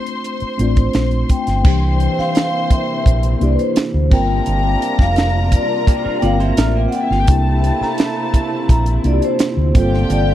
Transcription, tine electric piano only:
0, 0, Header, 1, 2, 480
1, 0, Start_track
1, 0, Tempo, 705053
1, 1121, Time_signature, 4, 2, 24, 8
1, 7042, End_track
2, 0, Start_track
2, 0, Title_t, "Tine electric piano"
2, 0, Program_c, 0, 4
2, 0, Control_c, 0, 64, 127
2, 0, Note_on_c, 0, 57, 77
2, 0, Note_on_c, 0, 60, 68
2, 0, Note_on_c, 0, 62, 68
2, 0, Note_on_c, 0, 65, 81
2, 393, Note_off_c, 0, 57, 0
2, 393, Note_on_c, 0, 57, 76
2, 400, Note_off_c, 0, 60, 0
2, 400, Note_on_c, 0, 60, 75
2, 408, Note_off_c, 0, 62, 0
2, 408, Note_on_c, 0, 62, 69
2, 414, Note_off_c, 0, 65, 0
2, 414, Note_on_c, 0, 65, 78
2, 1016, Note_off_c, 0, 57, 0
2, 1019, Note_off_c, 0, 60, 0
2, 1023, Note_off_c, 0, 62, 0
2, 1027, Note_off_c, 0, 65, 0
2, 1113, Note_on_c, 0, 58, 67
2, 1120, Note_on_c, 0, 62, 59
2, 1131, Control_c, 0, 64, 0
2, 1131, Note_on_c, 0, 52, 59
2, 1138, Note_on_c, 0, 67, 73
2, 1255, Control_c, 0, 64, 127
2, 1942, Note_off_c, 0, 58, 0
2, 1946, Note_off_c, 0, 62, 0
2, 1952, Note_off_c, 0, 52, 0
2, 1955, Note_off_c, 0, 67, 0
2, 2315, Note_on_c, 0, 58, 72
2, 2321, Note_on_c, 0, 62, 66
2, 2332, Note_on_c, 0, 64, 67
2, 2336, Note_on_c, 0, 67, 74
2, 2784, Note_off_c, 0, 58, 0
2, 2792, Note_on_c, 0, 58, 76
2, 2801, Note_off_c, 0, 62, 0
2, 2802, Note_on_c, 0, 60, 69
2, 2806, Note_off_c, 0, 64, 0
2, 2808, Note_on_c, 0, 65, 67
2, 2809, Note_off_c, 0, 67, 0
2, 2809, Control_c, 0, 64, 0
2, 2815, Note_on_c, 0, 70, 85
2, 2930, Control_c, 0, 64, 127
2, 3622, Note_off_c, 0, 58, 0
2, 3627, Note_off_c, 0, 60, 0
2, 3630, Note_off_c, 0, 65, 0
2, 3633, Note_off_c, 0, 70, 0
2, 4233, Note_on_c, 0, 58, 76
2, 4240, Note_on_c, 0, 60, 67
2, 4248, Note_on_c, 0, 65, 70
2, 4258, Note_on_c, 0, 70, 88
2, 4856, Note_off_c, 0, 58, 0
2, 4859, Note_off_c, 0, 60, 0
2, 4863, Note_off_c, 0, 65, 0
2, 4868, Note_off_c, 0, 70, 0
2, 4955, Note_on_c, 0, 58, 65
2, 4958, Note_on_c, 0, 62, 62
2, 4966, Note_on_c, 0, 64, 66
2, 4971, Control_c, 0, 64, 0
2, 4975, Note_on_c, 0, 67, 70
2, 5089, Control_c, 0, 64, 127
2, 5783, Note_off_c, 0, 58, 0
2, 5785, Note_off_c, 0, 62, 0
2, 5789, Note_off_c, 0, 64, 0
2, 5793, Note_off_c, 0, 67, 0
2, 6152, Note_on_c, 0, 58, 76
2, 6161, Note_on_c, 0, 62, 70
2, 6167, Note_on_c, 0, 64, 63
2, 6176, Note_on_c, 0, 65, 66
2, 6213, Note_off_c, 0, 65, 0
2, 6218, Note_on_c, 0, 67, 81
2, 6621, Note_off_c, 0, 58, 0
2, 6629, Note_on_c, 0, 58, 75
2, 6635, Note_on_c, 0, 60, 68
2, 6641, Note_off_c, 0, 62, 0
2, 6642, Note_on_c, 0, 65, 70
2, 6644, Note_off_c, 0, 64, 0
2, 6650, Note_on_c, 0, 69, 85
2, 6651, Control_c, 0, 64, 0
2, 6670, Note_off_c, 0, 67, 0
2, 6751, Control_c, 0, 64, 127
2, 7042, Note_off_c, 0, 58, 0
2, 7042, Note_off_c, 0, 60, 0
2, 7042, Note_off_c, 0, 65, 0
2, 7042, Note_off_c, 0, 69, 0
2, 7042, End_track
0, 0, End_of_file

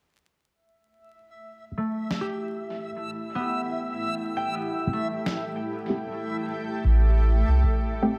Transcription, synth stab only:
0, 0, Header, 1, 2, 480
1, 0, Start_track
1, 0, Tempo, 789474
1, 322, Time_signature, 4, 2, 24, 8
1, 4976, End_track
2, 0, Start_track
2, 0, Title_t, "Synth stab"
2, 0, Program_c, 0, 62
2, 1041, Note_on_c, 0, 60, 67
2, 1042, Note_on_c, 0, 67, 85
2, 1043, Note_on_c, 0, 57, 78
2, 1156, Note_off_c, 0, 60, 0
2, 1157, Note_off_c, 0, 57, 0
2, 1157, Note_off_c, 0, 67, 0
2, 2961, Note_on_c, 0, 57, 86
2, 2961, Note_on_c, 0, 60, 84
2, 2961, Note_on_c, 0, 67, 99
2, 3132, Note_off_c, 0, 57, 0
2, 3132, Note_off_c, 0, 60, 0
2, 3132, Note_off_c, 0, 67, 0
2, 3585, Note_on_c, 0, 57, 81
2, 3585, Note_on_c, 0, 60, 73
2, 3585, Note_on_c, 0, 67, 94
2, 3722, Note_off_c, 0, 57, 0
2, 3722, Note_off_c, 0, 60, 0
2, 3722, Note_off_c, 0, 67, 0
2, 4880, Note_on_c, 0, 60, 72
2, 4880, Note_on_c, 0, 67, 88
2, 4881, Note_on_c, 0, 57, 80
2, 4976, Note_off_c, 0, 57, 0
2, 4976, Note_off_c, 0, 60, 0
2, 4976, Note_off_c, 0, 67, 0
2, 4976, End_track
0, 0, End_of_file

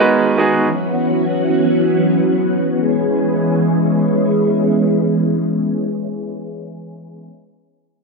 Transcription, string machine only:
0, 0, Header, 1, 2, 480
1, 0, Start_track
1, 0, Key_signature, 4, "minor"
1, 0, Tempo, 500000
1, 7716, End_track
2, 0, Start_track
2, 0, Title_t, "String machine"
2, 0, Program_c, 0, 50
2, 0, Note_on_c, 0, 51, 78
2, 0, Note_on_c, 0, 56, 73
2, 0, Note_on_c, 0, 59, 70
2, 0, Note_on_c, 0, 66, 84
2, 584, Note_off_c, 0, 56, 0
2, 602, Note_off_c, 0, 51, 0
2, 602, Note_off_c, 0, 66, 0
2, 623, Note_on_c, 0, 61, 70
2, 624, Note_on_c, 0, 52, 81
2, 624, Note_on_c, 0, 54, 70
2, 624, Note_on_c, 0, 66, 83
2, 2660, Note_off_c, 0, 59, 0
2, 2678, Note_off_c, 0, 52, 0
2, 2678, Note_off_c, 0, 54, 0
2, 2678, Note_off_c, 0, 61, 0
2, 2678, Note_off_c, 0, 66, 0
2, 2698, Note_on_c, 0, 56, 71
2, 2699, Note_on_c, 0, 52, 80
2, 2699, Note_on_c, 0, 59, 71
2, 2699, Note_on_c, 0, 61, 71
2, 2699, Note_on_c, 0, 68, 84
2, 6994, Note_off_c, 0, 52, 0
2, 6994, Note_off_c, 0, 56, 0
2, 6995, Note_off_c, 0, 59, 0
2, 6995, Note_off_c, 0, 61, 0
2, 6995, Note_off_c, 0, 68, 0
2, 7716, End_track
0, 0, End_of_file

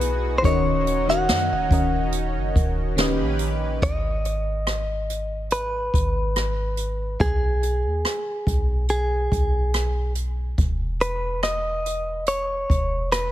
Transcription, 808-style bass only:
0, 0, Header, 1, 2, 480
1, 0, Start_track
1, 0, Key_signature, 5, "minor"
1, 0, Tempo, 845070
1, 251, Time_signature, 4, 2, 24, 8
1, 7565, End_track
2, 0, Start_track
2, 0, Title_t, "808-style bass"
2, 0, Program_c, 0, 38
2, 0, Note_on_c, 0, 35, 101
2, 234, Note_off_c, 0, 35, 0
2, 251, Note_on_c, 0, 27, 105
2, 732, Note_on_c, 0, 42, 105
2, 741, Note_off_c, 0, 27, 0
2, 862, Note_on_c, 0, 27, 98
2, 871, Note_off_c, 0, 42, 0
2, 966, Note_off_c, 0, 27, 0
2, 971, Note_on_c, 0, 27, 101
2, 1342, Note_on_c, 0, 30, 100
2, 1350, Note_off_c, 0, 27, 0
2, 1446, Note_off_c, 0, 30, 0
2, 1453, Note_on_c, 0, 27, 104
2, 1822, Note_on_c, 0, 34, 100
2, 1830, Note_off_c, 0, 27, 0
2, 2154, Note_off_c, 0, 34, 0
2, 2171, Note_on_c, 0, 32, 108
2, 3348, Note_off_c, 0, 32, 0
2, 3373, Note_on_c, 0, 32, 100
2, 4069, Note_off_c, 0, 32, 0
2, 4091, Note_on_c, 0, 35, 100
2, 4461, Note_on_c, 0, 39, 90
2, 4470, Note_off_c, 0, 35, 0
2, 4566, Note_off_c, 0, 39, 0
2, 4810, Note_on_c, 0, 35, 102
2, 5271, Note_off_c, 0, 35, 0
2, 5293, Note_on_c, 0, 35, 99
2, 5989, Note_off_c, 0, 35, 0
2, 6011, Note_on_c, 0, 28, 110
2, 7188, Note_off_c, 0, 28, 0
2, 7213, Note_on_c, 0, 28, 101
2, 7565, Note_off_c, 0, 28, 0
2, 7565, End_track
0, 0, End_of_file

